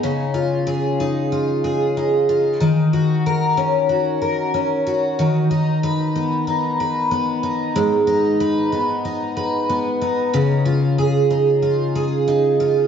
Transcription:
\new Staff \with { instrumentName = "Twelve-string acoustic guitar" } { \time 4/4 \key des \mixolydian \tempo 4 = 93 des8 f'8 aes'8 ees'8 f'8 aes'8 ees'8 f'8 | ees8 ges'8 bes'8 des'8 ges'8 bes'8 des'8 ges'8 | dis8 dis'8 b'8 b8 dis'8 b'8 b8 dis'8 | aes,8 ees'8 ces''8 ces'8 ees'8 ces''8 ces'8 ees'8 |
des8 f'8 aes'8 ees'8 f'8 aes'8 ees'8 f'8 | }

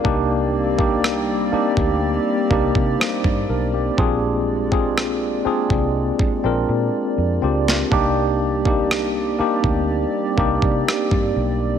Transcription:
<<
  \new Staff \with { instrumentName = "Tine electric piano" } { \time 4/4 \key c \minor \tempo 4 = 61 << { bes'16 r2 r8. <ees' c''>8 <d' bes'>16 <bes g'>16~ | <bes g'>16 r2. r8. | r1 | } \\ { <bes d' ees' g'>8 r16 <bes d' ees' g'>8 r16 <bes d' ees' g'>8. r16 <bes d' ees' g'>8 r4 | <c' d' f' aes'>8 r16 <c' d' f' aes'>8 r16 <c' d' f' aes'>8. r16 <c' d' f' bes'>8. r16 <c' d' f' g'>16 r16 | <bes d' ees' g'>8 r16 <bes d' ees' g'>8 r16 <bes d' ees' g'>8. r16 <bes d' ees' g'>4 r8 | } >> }
  \new Staff \with { instrumentName = "Analog synth pad" } { \time 4/4 \key c \minor <g bes c' g' d''>1 | <aes d''>1 | <g c' g'>1 | }
  \new Staff \with { instrumentName = "Fingered electric bass" } { \clef bass \time 4/4 \key c \minor c,4. r16 d,8 r16 c,16 c16 r16 g,16 b,,8 | bes,,4. r16 c,8 r16 bes,,16 bes,16 r16 f,16 des,8 | c,4. r16 d,8 r16 c,16 c16 r16 g,16 b,,8 | }
  \new DrumStaff \with { instrumentName = "Drums" } \drummode { \time 4/4 bd8. bd16 ss8. bd16 r8 bd16 bd16 ss16 bd8. | bd8. bd16 ss8. bd16 r16 bd8. r8. sn16 | bd8. bd16 ss8. bd16 r8 bd16 bd16 ss16 bd8. | }
>>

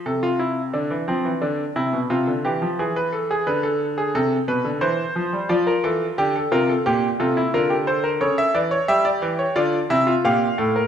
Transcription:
<<
  \new Staff \with { instrumentName = "Grand piano" } { \time 4/4 \key d \minor \tempo 4 = 88 << { r1 | r1 | d''16 bes'16 a'8 g'8 f'8 r8 a'8 bes'8 c''8 | cis''16 e''16 d''16 cis''16 e''16 d''8 cis''16 d''8 e''8 f''4 | } \\ { a'16 f'16 e'8 d'8 c'8 d'8 e'8 f'8 g'8 | gis'16 b'16 a'16 gis'16 b'16 a'8 gis'16 a'8 b'8 c''4 | f'4 r16 a'16 bes'16 a'16 g'8 f'16 e'16 f'16 g'16 a'16 bes'16 | a'4 g'4 f'8 e'16 f'16 g'8 a'16 bes'16 | } >> }
  \new Staff \with { instrumentName = "Grand piano" } { \clef bass \time 4/4 \key d \minor c4 d16 e16 f16 e16 d8 c16 b,16 c16 d16 e16 f16 | e4 d4 c8 b,16 d16 e8 f16 g16 | f8 e8 d8 c8 bes,8 c8 d4 | cis8 e8 g8 e8 d8 c8 bes,8 a,8 | }
>>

